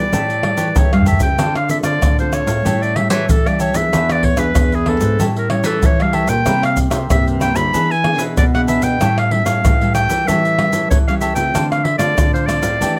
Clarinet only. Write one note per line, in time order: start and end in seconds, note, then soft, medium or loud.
0.00 0.74 D5 medium
0.78 0.92 C#5 medium
0.94 1.08 F5 medium
1.08 1.22 E5 medium
1.22 1.52 G5 medium
1.57 1.70 F5 medium
1.71 1.78 E5 medium
1.85 2.15 D5 medium
2.20 2.36 C5 medium
2.34 2.84 C#5 medium
2.83 2.97 D5 medium
2.96 3.10 E5 medium
3.10 3.32 C#5 medium
3.30 3.49 A4 medium
3.47 3.60 D5 medium
3.61 3.78 C#5 medium
3.76 4.13 E5 medium
4.12 4.26 D5 medium
4.25 4.40 C#5 medium
4.39 4.76 B4 medium
4.75 4.90 G#4 medium
4.88 5.24 A4 medium
5.38 5.51 A#4 medium
5.51 5.68 C#5 medium
5.66 5.87 A4 medium
5.86 6.03 C#5 medium
6.02 6.16 F5 medium
6.14 6.31 E5 medium
6.29 6.62 G5 loud
6.65 6.79 F5 medium
7.12 7.26 E5 loud
7.42 7.58 G5 loud
7.56 7.93 B5 loud
7.91 8.22 G#5 medium
8.38 8.45 D5 medium
8.55 8.61 F#5 medium
8.69 8.85 E5 medium
8.84 9.16 G5 loud
9.19 9.33 F5 medium
9.32 9.47 E5 medium
9.46 9.94 F5 medium
9.95 10.29 G5 loud
10.28 10.90 E5 loud
10.90 10.98 C#5 medium
11.08 11.15 F5 medium
11.21 11.35 E5 medium
11.35 11.66 G5 medium
11.71 11.86 F5 medium
11.84 11.98 E5 medium
11.98 12.29 D5 medium
12.34 12.48 C5 medium
12.47 12.95 D5 medium